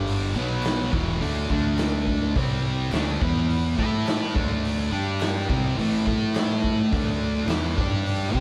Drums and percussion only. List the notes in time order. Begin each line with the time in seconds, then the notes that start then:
0.07 open hi-hat
0.35 clap
0.63 snare, clap, open hi-hat
0.93 kick
1.22 open hi-hat
1.50 kick
1.78 snare, clap, open hi-hat
2.07 kick
2.36 kick, open hi-hat
2.92 snare, clap, open hi-hat
3.22 kick
3.50 open hi-hat
3.79 kick
4.07 snare, clap, open hi-hat
4.36 kick
4.65 open hi-hat
5.20 snare, clap, open hi-hat
5.50 kick
5.79 open hi-hat
6.07 kick
6.35 snare, clap, open hi-hat
6.64 kick
6.93 kick, open hi-hat
7.49 snare, clap, open hi-hat
7.78 kick
8.06 open hi-hat
8.34 kick